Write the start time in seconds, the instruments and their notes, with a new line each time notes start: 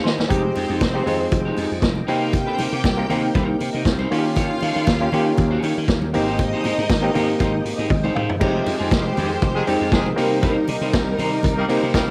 Already playing: clav C#4 F4 G4
0.04 slap bass D#3, clean electric guitar D#4 G4 D#5, clav C5, snare
0.19 muted clean electric guitar stroke, snare, high conga
0.29 slap bass F1, tonewheel organ F3 G#3 D#4 G4, clav G#3 C4 D#4 G4, clean electric guitar G#3 D#4 G4, string section C4 C5, kick, closed hi-hat, muted conga
0.44 muted clean electric guitar stroke
0.55 slap bass F2, clean electric guitar G#3 D#4 G4, open hi-hat, muted conga
0.68 slap bass F2, clean electric guitar G#3 D#4 G4
0.81 slap bass F1, kick, snare, closed hi-hat, high conga
0.94 clav G#3 C4 D#4 G4, muted clean electric guitar stroke
1.06 slap bass F2, clean electric guitar G#3 D#4 G4, clav G#3 C4 D#4 F4, open hi-hat, low conga
1.19 muted clean electric guitar stroke
1.31 slap bass F1, muted clean electric guitar stroke, kick, closed hi-hat, muted conga, low conga
1.45 clean electric guitar G#3 D#4 G4
1.57 slap bass F2, clean electric guitar G#3 D#4 G4, open hi-hat, muted conga
1.70 slap bass F2, muted clean electric guitar stroke
1.82 slap bass F1, muted clean electric guitar stroke, kick, snare, closed hi-hat, high conga
1.95 muted clean electric guitar stroke, high conga
2.07 slap bass C3, tonewheel organ D#3 A#3 C4, clav A#3 C4 D#4 G4, clean electric guitar D#4 A#4 C5, string section G4 G5, open hi-hat
2.21 clean electric guitar D#4 A#4 C5
2.32 muted clean electric guitar stroke, kick, closed hi-hat, muted conga
2.47 clean electric guitar D#4 A#4 C5
2.59 slap bass C3, clean electric guitar D#4 A#4 C5, open hi-hat, muted conga
2.72 slap bass C3, muted clean electric guitar stroke
2.84 slap bass C2, kick, snare, closed hi-hat, high conga
2.97 clav A#3 C4 D#4 G4, muted clean electric guitar stroke
3.09 slap bass C3, clav A#3 C4 D#4 G4, clean electric guitar D#4 A#4 C5, open hi-hat, low conga
3.23 muted clean electric guitar stroke
3.34 slap bass C2, clean electric guitar D#4 A#4 C5, kick, closed hi-hat, muted conga, low conga
3.48 muted clean electric guitar stroke
3.59 slap bass C3, muted clean electric guitar stroke, open hi-hat, muted conga
3.73 slap bass C3, clean electric guitar D#4 A#4 D#5
3.85 slap bass C2, muted clean electric guitar stroke, kick, snare, closed hi-hat, high conga
3.99 clean electric guitar D#4 A#4 C5, high conga
4.11 slap bass D#3, clav A#3 C#4 F4 F#4, tonewheel organ A#3 C#4 G4, clean electric guitar D#4 G4 C#5, string section F4 F5, open hi-hat
4.18 clav G4
4.25 muted clean electric guitar stroke
4.36 clean electric guitar D#4 G4 C#5, kick, closed hi-hat, muted conga
4.50 muted clean electric guitar stroke
4.61 slap bass D#3, clean electric guitar D#4 G4 C#5, open hi-hat, muted conga
4.75 slap bass D#3, clean electric guitar D#4 G4 C#5
4.87 slap bass D#2, kick, snare, closed hi-hat, high conga
5.01 clav A#3 C#4 F4 G4, muted clean electric guitar stroke
5.12 slap bass D#3, clav A#3 C#4 F4 G4, clean electric guitar D#4 G4 C#5, open hi-hat, low conga
5.26 muted clean electric guitar stroke
5.37 slap bass D#2, muted clean electric guitar stroke, kick, closed hi-hat, muted conga, low conga
5.51 clean electric guitar D#4 G4 C#5
5.63 slap bass D#3, clean electric guitar D#4 G4 C#5, open hi-hat, muted conga
5.76 slap bass D#3, muted clean electric guitar stroke
5.88 slap bass D#2, muted clean electric guitar stroke, kick, snare, closed hi-hat, high conga
6.02 muted clean electric guitar stroke, high conga
6.13 slap bass G#1, tonewheel organ G#3 C4, clav A#3 C4 D#4 G4, clean electric guitar D#4 G4 C5, string section D#4 D#5, open hi-hat
6.27 clean electric guitar D#4 G4 C5
6.39 muted clean electric guitar stroke, kick, closed hi-hat, muted conga
6.53 clean electric guitar D#4 G4 C5
6.64 slap bass G#2, clean electric guitar D#4 G4 C5, open hi-hat, muted conga
6.78 slap bass G#2, muted clean electric guitar stroke
6.89 slap bass G#1, kick, snare, closed hi-hat, high conga
7.02 clav A#3 C4 D#4 G4, muted clean electric guitar stroke
7.14 slap bass G#2, clav A#3 C4 D#4 G4, clean electric guitar D#4 G4 C5, open hi-hat, low conga
7.28 muted clean electric guitar stroke
7.39 slap bass G#1, clean electric guitar D#4 G4 C5, kick, closed hi-hat, muted conga, low conga
7.53 muted clean electric guitar stroke
7.64 slap bass G#2, muted clean electric guitar stroke, open hi-hat
7.78 slap bass G#2, clean electric guitar D#4 G4 D#5
7.90 slap bass G#1, clav D#5, muted clean electric guitar stroke, kick, high tom, high conga
8.04 clean electric guitar D#4 G4 C5, mid tom, high conga
8.15 slap bass G#2, clean electric guitar D#4 G4 C5, clav F5, mid tom
8.29 muted clean electric guitar stroke, floor tom
8.40 slap bass F1, tonewheel organ D#3 G#3 F4 G4, clav G#3 C4 D#4 G4, clean electric guitar G#3 D#4 G4, string section G#3 G4 C5, kick, crash, muted conga
8.54 muted clean electric guitar stroke
8.66 slap bass F2, muted clean electric guitar stroke, open hi-hat, muted conga
8.79 slap bass F2, clean electric guitar G#3 D#4 G#4
8.91 slap bass F1, muted clean electric guitar stroke, kick, snare, closed hi-hat, high conga
9.05 muted clean electric guitar stroke
9.17 slap bass F2, clean electric guitar G#3 D#4 G#4, open hi-hat, low conga
9.32 muted clean electric guitar stroke
9.42 slap bass F1, muted clean electric guitar stroke, kick, closed hi-hat, muted conga
9.55 horn section D#3 G#3 C4 G#4, muted clean electric guitar stroke
9.67 slap bass F2, clav G3 C4 D#4 G4, clean electric guitar G#3 D#4 G4, open hi-hat
9.73 clav G#3
9.81 slap bass F2, clean electric guitar G#3 D#4 G4
9.92 slap bass F1, horn section D#3 G#3 C4 G#4, kick, snare, closed hi-hat, high conga
10.06 muted clean electric guitar stroke, high conga
10.16 slap bass C3, string section G3 D#4 A#4, clav A#3 C4 D#4 G4, tonewheel organ A#3 C4, clean electric guitar D#4 A#4 C5, open hi-hat
10.31 muted clean electric guitar stroke
10.42 clean electric guitar D#4 A#4 C5, kick, closed hi-hat, muted conga
10.57 muted clean electric guitar stroke
10.68 slap bass C3, muted clean electric guitar stroke, open hi-hat, muted conga
10.81 slap bass C3, clean electric guitar D#4 A#4 C5
10.93 slap bass C2, muted clean electric guitar stroke, kick, snare, closed hi-hat, high conga
11.08 muted clean electric guitar stroke
11.19 slap bass C3, clean electric guitar D#4 A#4 C5, open hi-hat, low conga
11.32 muted clean electric guitar stroke
11.43 slap bass C2, muted clean electric guitar stroke, kick, closed hi-hat, muted conga, low conga
11.57 horn section G3 A#3 D#4 A#4, muted clean electric guitar stroke
11.68 slap bass C3, clav A#3 C4 D#4 G4, clean electric guitar D#4 A#4 C5, open hi-hat
11.83 slap bass C3, clean electric guitar D#4 A#4 C5
11.94 slap bass C2, horn section G3 A#3 D#4 A#4, muted clean electric guitar stroke, kick, snare, closed hi-hat, high conga